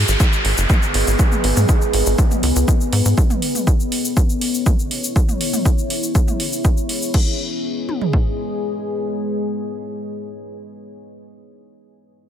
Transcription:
0.00 7.10 B3 medium
0.00 3.14 G#4 medium
0.00 3.14 B4 medium
0.00 3.14 D#5 medium
0.00 downlifter medium
0.08 0.16 G#1 medium
0.08 shaker medium
0.20 kick loud
0.20 shaker medium
0.33 shaker soft
0.45 0.54 G#1 medium
0.45 open hi-hat loud
0.58 0.66 F#1 medium
0.58 shaker medium
0.70 kick loud
0.70 mid tom medium
0.70 shaker medium
0.82 shaker soft
0.94 1.03 G#1 loud
0.94 open hi-hat loud
1.07 1.16 G#1 medium
1.07 shaker medium
1.19 kick loud
1.19 shaker medium
1.32 mid tom medium
1.32 shaker soft
1.44 1.53 G#1 medium
1.44 open hi-hat loud
1.57 1.65 G#2 medium
1.57 mid tom medium
1.57 shaker medium
1.69 kick loud
1.69 shaker medium
1.82 shaker soft
1.93 2.02 G#1 medium
1.93 open hi-hat loud
2.06 2.15 G#1 medium
2.06 shaker medium
2.18 kick loud
2.18 shaker medium
2.31 mid tom medium
2.31 shaker soft
2.43 2.52 C#2 medium
2.43 open hi-hat loud
2.56 2.64 C#2 medium
2.56 shaker medium
2.68 kick loud
2.68 shaker medium
2.81 shaker soft
2.92 3.02 G#2 loud
2.92 open hi-hat loud
3.05 3.14 G#2 medium
3.05 shaker medium
3.17 7.10 E4 medium
3.17 5.14 A4 medium
3.17 7.10 C#5 medium
3.17 kick loud
3.17 shaker medium
3.30 mid tom medium
3.30 shaker soft
3.42 open hi-hat loud
3.55 mid tom medium
3.55 shaker medium
3.67 kick loud
3.67 shaker medium
3.80 shaker soft
3.92 open hi-hat loud
4.05 shaker medium
4.17 kick loud
4.17 shaker medium
4.29 shaker soft
4.41 open hi-hat loud
4.54 shaker medium
4.66 kick loud
4.66 mid tom medium
4.66 shaker medium
4.79 shaker soft
4.91 open hi-hat loud
5.04 shaker medium
5.16 7.12 G#4 medium
5.16 kick loud
5.16 shaker medium
5.29 mid tom medium
5.29 shaker soft
5.41 open hi-hat loud
5.53 mid tom medium
5.53 shaker medium
5.65 kick loud
5.65 shaker medium
5.78 shaker soft
5.90 open hi-hat loud
6.03 shaker medium
6.15 kick loud
6.15 shaker medium
6.28 mid tom medium
6.28 shaker soft
6.40 open hi-hat loud
6.53 shaker medium
6.65 kick loud
6.65 shaker medium
6.77 shaker soft
6.89 open hi-hat loud
7.02 shaker medium
7.14 11.31 G#3 medium
7.14 11.31 G#4 medium
7.14 11.31 B4 medium
7.14 11.31 D#5 loud
7.14 kick loud
7.14 crash medium
7.89 mid tom medium
8.01 floor tom medium
8.13 kick medium

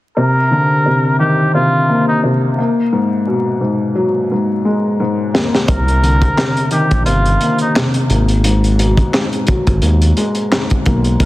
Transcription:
0.17 0.84 C3 medium
0.17 1.16 A#4 medium
0.51 2.58 D3 medium
0.86 1.53 C3 medium
1.19 2.58 D#3 medium
1.19 1.51 G4 medium
1.54 2.22 C3 medium
1.54 2.05 F4 medium
1.90 2.57 A#3 medium
2.08 2.22 D#4 medium
2.23 2.58 C3 medium
2.58 4.65 A#3 medium
2.92 3.59 G#2 medium
3.27 5.34 B2 medium
3.61 4.30 G#2 medium
3.95 5.68 F#3 medium
4.31 4.99 G#2 medium
4.65 5.69 G#3 medium
5.00 5.69 G#2 medium
5.34 5.69 A#3 medium
5.34 snare loud
5.55 snare medium
5.68 6.30 C2 loud
5.68 6.36 C3 medium
5.68 6.68 A#4 loud
5.68 kick loud
5.68 closed hi-hat loud
5.88 closed hi-hat medium
6.02 8.10 D3 medium
6.02 closed hi-hat medium
6.22 kick medium
6.22 closed hi-hat soft
6.37 7.05 C3 medium
6.37 snare loud
6.37 clap medium
6.57 closed hi-hat soft
6.71 8.09 D#3 medium
6.71 7.03 G4 medium
6.71 closed hi-hat medium
6.91 7.05 A#1 medium
6.91 kick medium
6.91 closed hi-hat medium
7.06 7.37 G1 loud
7.06 7.74 C3 medium
7.06 7.57 F4 medium
7.06 closed hi-hat medium
7.26 closed hi-hat medium
7.41 8.09 A#3 medium
7.41 closed hi-hat medium
7.58 7.74 D#4 medium
7.58 closed hi-hat soft
7.75 8.10 C3 medium
7.75 snare loud
7.75 clap loud
7.94 closed hi-hat medium
8.10 9.02 G#1 loud
8.10 10.17 A#3 medium
8.10 closed hi-hat medium
8.28 closed hi-hat medium
8.44 9.11 G#2 medium
8.44 closed hi-hat loud
8.64 closed hi-hat medium
8.79 10.86 B2 medium
8.79 closed hi-hat medium
8.97 kick medium
8.97 closed hi-hat soft
9.13 9.81 G#2 medium
9.13 snare loud
9.13 clap medium
9.33 closed hi-hat soft
9.47 11.20 F#3 medium
9.47 kick medium
9.47 closed hi-hat medium
9.67 9.80 G#1 medium
9.67 kick medium
9.67 closed hi-hat soft
9.82 10.13 D#2 loud
9.82 10.50 G#2 medium
9.82 closed hi-hat medium
10.02 closed hi-hat medium
10.17 11.20 G#3 medium
10.17 closed hi-hat medium
10.35 closed hi-hat soft
10.52 11.21 G#2 medium
10.52 snare loud
10.52 clap loud
10.70 kick medium
10.70 closed hi-hat medium
10.86 11.17 B1 medium
10.86 11.20 A#3 medium
10.86 kick loud
10.86 closed hi-hat medium
11.04 closed hi-hat medium
11.20 11.25 C2 loud
11.20 11.25 C3 medium
11.20 11.25 A#4 loud
11.20 kick loud
11.20 closed hi-hat loud

